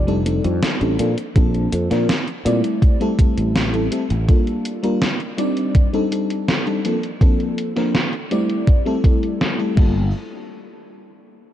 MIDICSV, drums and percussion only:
0, 0, Header, 1, 2, 480
1, 0, Start_track
1, 0, Tempo, 731707
1, 892, Time_signature, 4, 2, 24, 8
1, 7566, End_track
2, 0, Start_track
2, 0, Title_t, "Drums"
2, 53, Note_on_c, 9, 42, 28
2, 119, Note_off_c, 9, 42, 0
2, 171, Note_on_c, 9, 42, 98
2, 237, Note_off_c, 9, 42, 0
2, 292, Note_on_c, 9, 42, 53
2, 357, Note_off_c, 9, 42, 0
2, 411, Note_on_c, 9, 38, 121
2, 411, Note_on_c, 9, 42, 55
2, 476, Note_off_c, 9, 38, 0
2, 476, Note_off_c, 9, 42, 0
2, 532, Note_on_c, 9, 42, 27
2, 598, Note_off_c, 9, 42, 0
2, 651, Note_on_c, 9, 42, 98
2, 717, Note_off_c, 9, 42, 0
2, 772, Note_on_c, 9, 42, 56
2, 838, Note_off_c, 9, 42, 0
2, 891, Note_on_c, 9, 36, 127
2, 892, Note_on_c, 9, 42, 55
2, 956, Note_off_c, 9, 36, 0
2, 958, Note_off_c, 9, 42, 0
2, 1013, Note_on_c, 9, 42, 28
2, 1079, Note_off_c, 9, 42, 0
2, 1131, Note_on_c, 9, 42, 100
2, 1197, Note_off_c, 9, 42, 0
2, 1253, Note_on_c, 9, 38, 37
2, 1253, Note_on_c, 9, 42, 55
2, 1319, Note_off_c, 9, 38, 0
2, 1319, Note_off_c, 9, 42, 0
2, 1373, Note_on_c, 9, 38, 125
2, 1373, Note_on_c, 9, 42, 56
2, 1438, Note_off_c, 9, 38, 0
2, 1438, Note_off_c, 9, 42, 0
2, 1493, Note_on_c, 9, 42, 28
2, 1559, Note_off_c, 9, 42, 0
2, 1612, Note_on_c, 9, 42, 98
2, 1678, Note_off_c, 9, 42, 0
2, 1733, Note_on_c, 9, 42, 55
2, 1798, Note_off_c, 9, 42, 0
2, 1851, Note_on_c, 9, 36, 122
2, 1853, Note_on_c, 9, 42, 57
2, 1917, Note_off_c, 9, 36, 0
2, 1919, Note_off_c, 9, 42, 0
2, 1974, Note_on_c, 9, 42, 29
2, 2040, Note_off_c, 9, 42, 0
2, 2091, Note_on_c, 9, 36, 111
2, 2094, Note_on_c, 9, 42, 97
2, 2157, Note_off_c, 9, 36, 0
2, 2159, Note_off_c, 9, 42, 0
2, 2214, Note_on_c, 9, 42, 54
2, 2280, Note_off_c, 9, 42, 0
2, 2333, Note_on_c, 9, 38, 123
2, 2333, Note_on_c, 9, 42, 56
2, 2398, Note_off_c, 9, 38, 0
2, 2398, Note_off_c, 9, 42, 0
2, 2452, Note_on_c, 9, 42, 28
2, 2518, Note_off_c, 9, 42, 0
2, 2571, Note_on_c, 9, 42, 99
2, 2636, Note_off_c, 9, 42, 0
2, 2692, Note_on_c, 9, 42, 57
2, 2757, Note_off_c, 9, 42, 0
2, 2811, Note_on_c, 9, 36, 122
2, 2811, Note_on_c, 9, 42, 55
2, 2877, Note_off_c, 9, 36, 0
2, 2877, Note_off_c, 9, 42, 0
2, 2933, Note_on_c, 9, 42, 28
2, 2999, Note_off_c, 9, 42, 0
2, 3052, Note_on_c, 9, 42, 97
2, 3117, Note_off_c, 9, 42, 0
2, 3172, Note_on_c, 9, 42, 54
2, 3238, Note_off_c, 9, 42, 0
2, 3291, Note_on_c, 9, 38, 125
2, 3291, Note_on_c, 9, 42, 54
2, 3357, Note_off_c, 9, 38, 0
2, 3357, Note_off_c, 9, 42, 0
2, 3412, Note_on_c, 9, 42, 28
2, 3478, Note_off_c, 9, 42, 0
2, 3532, Note_on_c, 9, 42, 94
2, 3597, Note_off_c, 9, 42, 0
2, 3653, Note_on_c, 9, 42, 54
2, 3718, Note_off_c, 9, 42, 0
2, 3770, Note_on_c, 9, 36, 124
2, 3773, Note_on_c, 9, 42, 55
2, 3836, Note_off_c, 9, 36, 0
2, 3839, Note_off_c, 9, 42, 0
2, 3894, Note_on_c, 9, 42, 28
2, 3960, Note_off_c, 9, 42, 0
2, 4015, Note_on_c, 9, 42, 94
2, 4080, Note_off_c, 9, 42, 0
2, 4135, Note_on_c, 9, 42, 54
2, 4201, Note_off_c, 9, 42, 0
2, 4253, Note_on_c, 9, 38, 127
2, 4253, Note_on_c, 9, 42, 53
2, 4319, Note_off_c, 9, 38, 0
2, 4319, Note_off_c, 9, 42, 0
2, 4374, Note_on_c, 9, 42, 27
2, 4440, Note_off_c, 9, 42, 0
2, 4492, Note_on_c, 9, 42, 96
2, 4558, Note_off_c, 9, 42, 0
2, 4614, Note_on_c, 9, 42, 56
2, 4680, Note_off_c, 9, 42, 0
2, 4730, Note_on_c, 9, 36, 127
2, 4734, Note_on_c, 9, 42, 52
2, 4796, Note_off_c, 9, 36, 0
2, 4799, Note_off_c, 9, 42, 0
2, 4854, Note_on_c, 9, 42, 26
2, 4920, Note_off_c, 9, 42, 0
2, 4973, Note_on_c, 9, 42, 93
2, 5038, Note_off_c, 9, 42, 0
2, 5094, Note_on_c, 9, 38, 38
2, 5094, Note_on_c, 9, 42, 53
2, 5159, Note_off_c, 9, 38, 0
2, 5159, Note_off_c, 9, 42, 0
2, 5213, Note_on_c, 9, 38, 126
2, 5213, Note_on_c, 9, 42, 53
2, 5278, Note_off_c, 9, 38, 0
2, 5278, Note_off_c, 9, 42, 0
2, 5333, Note_on_c, 9, 42, 27
2, 5398, Note_off_c, 9, 42, 0
2, 5453, Note_on_c, 9, 42, 91
2, 5518, Note_off_c, 9, 42, 0
2, 5573, Note_on_c, 9, 42, 52
2, 5639, Note_off_c, 9, 42, 0
2, 5690, Note_on_c, 9, 36, 126
2, 5694, Note_on_c, 9, 42, 52
2, 5756, Note_off_c, 9, 36, 0
2, 5759, Note_off_c, 9, 42, 0
2, 5814, Note_on_c, 9, 42, 26
2, 5880, Note_off_c, 9, 42, 0
2, 5931, Note_on_c, 9, 36, 112
2, 5933, Note_on_c, 9, 42, 88
2, 5996, Note_off_c, 9, 36, 0
2, 5999, Note_off_c, 9, 42, 0
2, 6055, Note_on_c, 9, 42, 52
2, 6120, Note_off_c, 9, 42, 0
2, 6174, Note_on_c, 9, 38, 127
2, 6174, Note_on_c, 9, 42, 55
2, 6239, Note_off_c, 9, 38, 0
2, 6239, Note_off_c, 9, 42, 0
2, 6295, Note_on_c, 9, 42, 27
2, 6360, Note_off_c, 9, 42, 0
2, 6411, Note_on_c, 9, 36, 112
2, 6414, Note_on_c, 9, 49, 89
2, 6477, Note_off_c, 9, 36, 0
2, 6479, Note_off_c, 9, 49, 0
2, 7566, End_track
0, 0, End_of_file